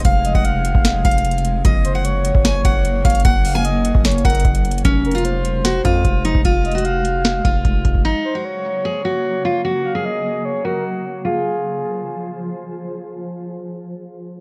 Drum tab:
HH |x-----------x-----------x-----------x-----------x-----------x---x---x---x---x---x---x-----------|x-----------x-----------x-----------x-----------x-----------x-----------x-----------x--x--x--x--|x-----------o-----------x-----------x-----------x---x---x---x--x--x--x--x-----x-----x---x---x---|x-----------x---x---x---x-----------x-----------x-----------x-----------x-----------x-----------|
SD |------------------------------------------------o-----------------------------------------------|------------------------------------------------o-----------------------------------------------|------------------------------------------------o-----------------------------------------------|------------------------------------------------o-----------------------------------------------|
BD |o-----------------o-----------------------o-----------------o-----------------------------------|o-----------------------------------------o-----------------o-----------------------o-----------|o-----------------------------------------o-----------------o-----------o-----------------------|o-----------------------------------------------------------o-----------o-----------------o-----|

HH |x-----------x---x---x---x-----------x-----------x-----------x-----------x-----------x-----------|------------------------------------------------------------------------------------------------|------------------------------------------------------------------------------------------------|------------------------------------------------------------------------------------------------|
SD |------------------------------------------------o-----------------------------------------------|------------------------------------------------------------------------------------------------|------------------------------------------------------------------------------------------------|------------------------------------------------------------------------------------------------|
BD |o-----------------------------------------------------------o-----------o-----------o-----o-----|------------------------------------------------------------------------------------------------|------------------------------------------------------------------------------------------------|------------------------------------------------------------------------------------------------|

HH |------------------------------------------------------------------------------------------------|
SD |------------------------------------------------------------------------------------------------|
BD |------------------------------------------------------------------------------------------------|